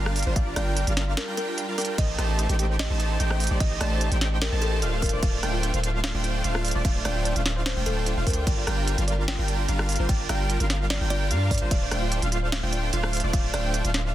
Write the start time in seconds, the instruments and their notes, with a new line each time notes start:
Already playing: 808-style bass G1, supersaw synth G3 D4 F4 A#4 F5, digital synth lead F5
0.06 cross-stick
0.16 synth arpeggio sound A#4, closed hi-hat, open hi-hat
0.23 808-style bass G1, supersaw synth G3 D4 F4 A#4 C5, synth arpeggio sound F4, digital synth lead C5, closed hi-hat
0.36 digital synth lead D5, synth arpeggio sound D5, kalimba F5, kick, closed hi-hat
0.47 synth arpeggio sound F4
0.56 808-style bass G1, supersaw synth G3 D4 F4 A#4 G5, synth arpeggio sound F4, kalimba D5, digital synth lead G5, cross-stick, closed hi-hat
0.77 synth arpeggio sound A#4, closed hi-hat
0.87 808-style bass G1, supersaw synth G3 D4 F4 A#4 F5, synth arpeggio sound F4, digital synth lead F5, closed hi-hat
0.97 synth arpeggio sound D5, snare, closed hi-hat
1.08 synth arpeggio sound F4
1.17 synth arpeggio sound F4, kalimba A#4, snare, closed hi-hat
1.28 supersaw synth G3 D4 F4 A#4 G5, digital synth lead G5
1.37 supersaw synth G3 D4 F4 A#4 G5, kalimba A#4, synth arpeggio sound D5, digital synth lead G5, closed hi-hat
1.48 synth arpeggio sound F4
1.58 synth arpeggio sound F5, closed hi-hat
1.68 supersaw synth G3 D4 F4 A#4 F5, synth arpeggio sound F4, digital synth lead F5
1.78 supersaw synth G3 D4 F4 A#4 G5, kalimba A#4, synth arpeggio sound D5, digital synth lead G5, closed hi-hat, open hi-hat
1.85 synth arpeggio sound A#4, closed hi-hat
1.98 808-style bass A1, supersaw synth A3 D#4 D#5, synth arpeggio sound G4, kalimba D#5, digital synth lead D#5, kick, closed hi-hat, crash
2.09 synth arpeggio sound C5
2.18 808-style bass A1, supersaw synth A3 D#4 G4 C5 A5, digital synth lead A5, cross-stick, closed hi-hat
2.29 synth arpeggio sound G4
2.39 synth arpeggio sound D#5, closed hi-hat
2.49 808-style bass A1, supersaw synth A3 D#4 G4 C5 G5, synth arpeggio sound G4, digital synth lead G5, closed hi-hat
2.59 synth arpeggio sound G4, closed hi-hat
2.70 synth arpeggio sound C5
2.79 kalimba D#5, snare, closed hi-hat, crash
2.90 808-style bass A1, supersaw synth A3 D#4 G4 C5 A5, synth arpeggio sound G4, digital synth lead A5
3.00 synth arpeggio sound D#5, closed hi-hat
3.10 synth arpeggio sound G4
3.20 808-style bass A1, supersaw synth A3 D#4 G4 C5 G5, synth arpeggio sound G4, digital synth lead G5, closed hi-hat
3.31 synth arpeggio sound C5, cross-stick
3.40 closed hi-hat, open hi-hat
3.47 808-style bass A1, supersaw synth A3 D#4 G4 C5 D5, synth arpeggio sound G4, digital synth lead D5, closed hi-hat
3.60 synth arpeggio sound D#5, digital synth lead D#5, kalimba D#5, kick, closed hi-hat, crash
3.71 synth arpeggio sound G4
3.81 808-style bass A1, supersaw synth A3 D#4 G4 C5 A5, synth arpeggio sound G4, kalimba D5, digital synth lead A5, cross-stick, closed hi-hat
3.91 synth arpeggio sound C5
4.01 closed hi-hat
4.12 808-style bass A1, supersaw synth A3 D#4 G4 C5 G5, synth arpeggio sound G4, digital synth lead G5, closed hi-hat
4.21 synth arpeggio sound D#5, snare, closed hi-hat
4.32 synth arpeggio sound G4
4.42 synth arpeggio sound G4, kalimba A#4, snare, closed hi-hat, crash
4.52 808-style bass A1, supersaw synth A3 D#4 G4 C5 A5, synth arpeggio sound C5, digital synth lead A5
4.62 kalimba A4, closed hi-hat
4.72 synth arpeggio sound G4
4.82 808-style bass D1, supersaw synth A3 D4 F4 C5 F5, synth arpeggio sound D#5, digital synth lead F5, closed hi-hat
4.93 synth arpeggio sound G4
5.02 synth arpeggio sound F4, kalimba A#4, kick, closed hi-hat, open hi-hat
5.09 808-style bass D1, supersaw synth A3 D4 F4 C5 D5, synth arpeggio sound C5, digital synth lead D5, closed hi-hat
5.23 808-style bass D1, supersaw synth A3 D4 F4 D5, digital synth lead D5, kalimba F5, kick, closed hi-hat, crash
5.33 synth arpeggio sound F4
5.43 808-style bass D1, supersaw synth A3 D4 F4 C5 G5, synth arpeggio sound D5, digital synth lead G5, cross-stick, closed hi-hat
5.53 synth arpeggio sound F4
5.63 synth arpeggio sound F4, closed hi-hat
5.74 808-style bass D1, supersaw synth A3 D4 F4 C5 F5, synth arpeggio sound C5, digital synth lead F5, closed hi-hat
5.84 closed hi-hat
5.94 synth arpeggio sound F4
6.04 synth arpeggio sound D5, kalimba F5, snare, closed hi-hat, crash
6.14 808-style bass D1, supersaw synth A3 D4 F4 C5 G5, synth arpeggio sound F4, digital synth lead G5
6.24 synth arpeggio sound F4, closed hi-hat
6.35 synth arpeggio sound C5
6.44 808-style bass D1, supersaw synth A3 D4 F4 C5 F5, digital synth lead F5, closed hi-hat
6.55 synth arpeggio sound F4, cross-stick
6.65 synth arpeggio sound D5, closed hi-hat, open hi-hat
6.71 808-style bass D1, supersaw synth A3 D4 F4 C5 D5, synth arpeggio sound F4, digital synth lead D5, closed hi-hat
6.85 supersaw synth A3 D4 F4 C5 D5, synth arpeggio sound F4, digital synth lead D5, kalimba F5, kick, closed hi-hat, crash
6.95 synth arpeggio sound C5
7.05 808-style bass D1, supersaw synth A3 D4 F4 C5 G5, kalimba D5, digital synth lead G5, cross-stick, closed hi-hat
7.16 synth arpeggio sound F4
7.25 synth arpeggio sound D5, closed hi-hat
7.36 808-style bass D1, supersaw synth A3 D4 F4 C5 F5, synth arpeggio sound F4, digital synth lead F5, closed hi-hat
7.46 synth arpeggio sound F4, snare, closed hi-hat
7.56 synth arpeggio sound C5
7.66 kalimba C5, snare, closed hi-hat, crash
7.76 808-style bass D1, supersaw synth A3 D4 F4 C5 G5, synth arpeggio sound F4, digital synth lead G5
7.86 808-style bass D1, supersaw synth A3 D4 F4 C5 G5, kalimba A4, synth arpeggio sound C5, digital synth lead G5, closed hi-hat
7.97 synth arpeggio sound A5
8.06 synth arpeggio sound F4, closed hi-hat
8.17 808-style bass D1, supersaw synth A3 D4 F4 C5 F5, digital synth lead F5
8.27 808-style bass D2, supersaw synth A3 D4 F4 C5 G5, kalimba A#4, synth arpeggio sound C5, digital synth lead G5, kick, closed hi-hat, open hi-hat
8.33 synth arpeggio sound D5, closed hi-hat
8.47 808-style bass G1, supersaw synth G3 D4 F4 A#4 D5, digital synth lead D5, synth arpeggio sound D5, kalimba G5, kick, closed hi-hat, crash
8.58 synth arpeggio sound F4
8.67 808-style bass G1, supersaw synth G3 D4 F4 A#4 G5, synth arpeggio sound F4, digital synth lead G5, cross-stick, closed hi-hat
8.78 synth arpeggio sound A#4
8.87 closed hi-hat
8.98 808-style bass G1, supersaw synth G3 D4 F4 A#4 F5, synth arpeggio sound F4, digital synth lead F5, closed hi-hat
9.08 synth arpeggio sound D5, closed hi-hat
9.18 synth arpeggio sound F4
9.28 synth arpeggio sound F4, kalimba G5, snare, closed hi-hat, crash
9.39 808-style bass G1, supersaw synth G3 D4 F4 A#4 G5, synth arpeggio sound A#4, digital synth lead G5
9.48 closed hi-hat
9.59 synth arpeggio sound F4
9.68 808-style bass G1, supersaw synth G3 D4 F4 A#4 F5, synth arpeggio sound D5, digital synth lead F5, closed hi-hat
9.79 synth arpeggio sound F4, cross-stick
9.89 synth arpeggio sound F4, closed hi-hat, open hi-hat
9.96 808-style bass G1, supersaw synth G3 D4 F4 A#4 C5, synth arpeggio sound A#4, digital synth lead C5, closed hi-hat
10.09 digital synth lead D5, kalimba G5, kick, closed hi-hat, crash
10.20 synth arpeggio sound F4
10.29 808-style bass G1, supersaw synth G3 D4 F4 A#4 G5, synth arpeggio sound D5, kalimba F5, digital synth lead G5, cross-stick, closed hi-hat
10.40 synth arpeggio sound F4
10.50 synth arpeggio sound F4, closed hi-hat
10.60 808-style bass G1, supersaw synth G3 D4 F4 A#4 F5, synth arpeggio sound A#4, digital synth lead F5, closed hi-hat
10.70 snare, closed hi-hat
10.81 synth arpeggio sound F4
10.90 synth arpeggio sound D5, kalimba D5, snare, closed hi-hat, crash
11.01 808-style bass G1, supersaw synth G3 D4 F4 A#4 G5, synth arpeggio sound F4, digital synth lead G5
11.10 synth arpeggio sound F4, kalimba D5, closed hi-hat
11.21 synth arpeggio sound A#4
11.31 808-style bass G2, supersaw synth G3 D4 F4 A#4 F5, digital synth lead F5, closed hi-hat
11.41 synth arpeggio sound F4
11.51 synth arpeggio sound D5, kalimba D5, kick, closed hi-hat, open hi-hat
11.58 808-style bass G1, supersaw synth G3 D4 F4 A#4 C5, synth arpeggio sound F4, digital synth lead C5, closed hi-hat
11.71 808-style bass D1, supersaw synth A3 D4 F4 D5, synth arpeggio sound F4, digital synth lead D5, kalimba F5, kick, closed hi-hat, crash
11.82 synth arpeggio sound C5
11.91 808-style bass D1, supersaw synth A3 D4 F4 C5 G5, digital synth lead G5, cross-stick, closed hi-hat
12.02 synth arpeggio sound F4
12.12 synth arpeggio sound D5, closed hi-hat
12.22 808-style bass D1, supersaw synth A3 D4 F4 C5 F5, synth arpeggio sound F4, digital synth lead F5, closed hi-hat
12.32 synth arpeggio sound F4, closed hi-hat
12.43 synth arpeggio sound C5
12.52 kalimba F5, snare, closed hi-hat, crash
12.63 808-style bass D1, supersaw synth A3 D4 F4 C5 G5, synth arpeggio sound F4, digital synth lead G5
12.73 synth arpeggio sound D5, closed hi-hat
12.83 synth arpeggio sound F4
12.93 808-style bass D1, supersaw synth A3 D4 F4 C5 F5, synth arpeggio sound F4, digital synth lead F5, closed hi-hat
13.04 synth arpeggio sound C5, cross-stick
13.13 closed hi-hat, open hi-hat
13.20 808-style bass D1, supersaw synth A3 D4 F4 C5 D5, synth arpeggio sound F4, digital synth lead D5, closed hi-hat
13.33 808-style bass D1, supersaw synth A3 D4 F4 C5 D5, digital synth lead D5, synth arpeggio sound D5, kalimba F5, kick, closed hi-hat, crash
13.44 synth arpeggio sound F4
13.54 808-style bass D1, supersaw synth A3 D4 F4 C5 G5, synth arpeggio sound F4, kalimba D5, digital synth lead G5, cross-stick, closed hi-hat
13.64 synth arpeggio sound C5
13.74 closed hi-hat
13.85 808-style bass D1, supersaw synth A3 D4 F4 C5 F5, synth arpeggio sound F4, digital synth lead F5, closed hi-hat
13.94 synth arpeggio sound D5, snare, closed hi-hat
14.05 synth arpeggio sound F4